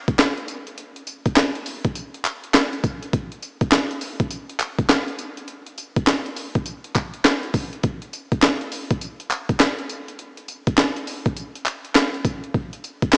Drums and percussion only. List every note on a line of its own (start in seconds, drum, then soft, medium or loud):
0.08 kick loud
0.08 closed hi-hat medium
0.19 snare loud
0.19 clap medium
0.19 closed hi-hat medium
0.19 tambourine loud
0.38 closed hi-hat soft
0.48 closed hi-hat medium
0.48 tambourine medium
0.67 closed hi-hat medium
0.78 closed hi-hat medium
0.96 closed hi-hat medium
1.07 closed hi-hat medium
1.07 tambourine medium
1.26 kick medium
1.26 closed hi-hat medium
1.36 snare loud
1.36 clap medium
1.36 closed hi-hat medium
1.36 tambourine medium
1.55 closed hi-hat soft
1.66 open hi-hat medium
1.66 tambourine medium
1.85 kick loud
1.85 closed hi-hat medium
1.95 closed hi-hat medium
1.95 tambourine medium
2.14 closed hi-hat medium
2.25 clap medium
2.25 closed hi-hat medium
2.25 tambourine medium
2.44 closed hi-hat medium
2.54 snare loud
2.54 clap medium
2.54 closed hi-hat medium
2.54 tambourine loud
2.73 closed hi-hat soft
2.83 kick medium
2.83 closed hi-hat medium
2.83 tambourine medium
3.02 closed hi-hat medium
3.13 kick loud
3.13 closed hi-hat medium
3.32 closed hi-hat medium
3.42 closed hi-hat medium
3.42 tambourine medium
3.61 kick loud
3.61 closed hi-hat medium
3.72 snare loud
3.72 clap loud
3.72 closed hi-hat medium
3.72 tambourine medium
3.91 closed hi-hat medium
4.01 open hi-hat medium
4.01 tambourine medium
4.20 kick loud
4.20 closed hi-hat medium
4.31 closed hi-hat medium
4.31 tambourine medium
4.50 closed hi-hat medium
4.60 clap medium
4.60 closed hi-hat medium
4.60 tambourine medium
4.79 kick medium
4.79 closed hi-hat medium
4.89 snare loud
4.89 clap medium
4.89 closed hi-hat medium
4.89 tambourine loud
5.08 closed hi-hat soft
5.19 closed hi-hat medium
5.19 tambourine medium
5.37 closed hi-hat medium
5.48 closed hi-hat medium
5.66 closed hi-hat medium
5.78 closed hi-hat medium
5.78 tambourine medium
5.96 kick loud
5.96 closed hi-hat medium
6.07 snare loud
6.07 clap loud
6.07 closed hi-hat medium
6.07 tambourine medium
6.26 closed hi-hat medium
6.36 open hi-hat medium
6.36 tambourine medium
6.55 kick loud
6.55 closed hi-hat medium
6.66 closed hi-hat medium
6.66 tambourine medium
6.84 closed hi-hat medium
6.95 kick medium
6.95 clap medium
6.95 closed hi-hat medium
6.95 tambourine medium
7.14 closed hi-hat medium
7.25 snare loud
7.25 clap medium
7.25 closed hi-hat medium
7.25 tambourine loud
7.43 closed hi-hat soft
7.54 kick loud
7.54 open hi-hat medium
7.54 tambourine medium
7.73 closed hi-hat soft
7.83 kick loud
7.83 closed hi-hat medium
8.02 closed hi-hat medium
8.13 closed hi-hat medium
8.13 tambourine medium
8.32 kick medium
8.32 closed hi-hat medium
8.42 snare loud
8.42 clap medium
8.42 closed hi-hat medium
8.42 tambourine medium
8.61 closed hi-hat soft
8.72 open hi-hat medium
8.72 tambourine medium
8.91 kick loud
8.91 closed hi-hat medium
9.01 closed hi-hat medium
9.01 tambourine medium
9.20 closed hi-hat medium
9.31 clap medium
9.31 closed hi-hat medium
9.31 tambourine medium
9.49 kick medium
9.49 closed hi-hat medium
9.60 snare loud
9.60 clap medium
9.60 closed hi-hat medium
9.60 tambourine loud
9.78 closed hi-hat soft
9.89 closed hi-hat medium
9.89 tambourine medium
10.08 closed hi-hat soft
10.19 closed hi-hat medium
10.37 closed hi-hat medium
10.48 closed hi-hat medium
10.48 tambourine medium
10.67 kick loud
10.67 closed hi-hat medium
10.77 snare loud
10.77 clap medium
10.77 closed hi-hat medium
10.77 tambourine medium
10.96 closed hi-hat medium
11.07 open hi-hat medium
11.07 tambourine medium
11.26 kick loud
11.26 closed hi-hat medium
11.37 closed hi-hat medium
11.37 tambourine medium
11.55 closed hi-hat medium
11.66 clap medium
11.66 closed hi-hat medium
11.66 tambourine medium
11.85 closed hi-hat medium
11.95 snare loud
11.95 clap medium
11.95 closed hi-hat medium
11.95 tambourine loud
12.14 closed hi-hat soft
12.25 kick medium
12.25 closed hi-hat medium
12.25 tambourine medium
12.44 closed hi-hat soft
12.54 kick loud
12.54 closed hi-hat medium
12.73 closed hi-hat medium
12.84 closed hi-hat medium
12.84 tambourine medium
13.02 kick medium
13.02 closed hi-hat medium
13.13 snare loud
13.13 clap medium
13.13 closed hi-hat medium
13.13 tambourine medium